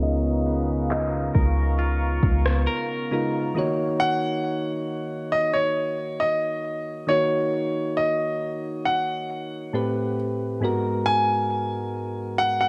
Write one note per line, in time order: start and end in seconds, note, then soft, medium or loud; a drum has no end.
0.00 1.31 C#2 loud
0.00 3.07 C#3 medium
0.00 3.55 C#3 medium
0.00 3.07 G#3 medium
0.00 3.07 B3 medium
0.00 3.51 B3 medium
0.00 3.08 D#4 medium
0.00 3.08 F4 medium
0.00 3.09 A#4 medium
0.00 0.87 D#5 medium
0.00 3.51 F5 medium
0.00 3.51 A#5 medium
0.00 1.31 D#6 medium
0.00 closed hi-hat medium
0.46 3.64 B3 medium
0.90 2.63 D#5 medium
0.90 clap loud
0.90 closed hi-hat medium
1.35 2.20 C#2 loud
1.35 2.67 A#4 medium
1.35 3.53 C#6 medium
1.35 kick medium
1.79 3.64 F4 medium
1.79 closed hi-hat medium
2.23 2.67 C#2 loud
2.23 kick medium
2.46 cross-stick loud
2.67 4.14 A#4 medium
3.11 3.55 C#3 medium
3.11 3.56 G#3 medium
3.11 3.56 B3 medium
3.11 3.55 D#4 medium
3.11 3.56 F4 medium
3.11 3.56 A#4 medium
3.54 7.04 D#3 medium
3.54 7.04 A#3 medium
3.54 7.05 D#4 medium
3.54 7.05 F#4 medium
3.54 7.06 C#5 medium
4.00 5.36 F#5 loud
5.32 5.55 D#5 loud
5.54 6.22 C#5 medium
6.20 7.04 D#5 loud
7.07 9.68 D#3 medium
7.07 9.69 A#3 medium
7.07 9.69 D#4 medium
7.07 9.70 F#4 medium
7.07 7.99 C#5 loud
7.07 9.70 C#5 medium
7.97 8.88 D#5 loud
8.85 10.13 F#5 loud
9.73 10.61 A2 medium
9.73 10.62 A3 medium
9.73 10.62 C4 medium
9.73 10.62 G4 medium
9.73 10.62 B4 medium
10.61 12.69 G#2 medium
10.61 12.69 G#3 medium
10.61 12.69 B3 medium
10.61 12.69 F#4 medium
10.61 12.69 A#4 medium
11.06 12.42 G#5 loud
12.38 12.59 F#5 loud
12.61 12.69 F#5 loud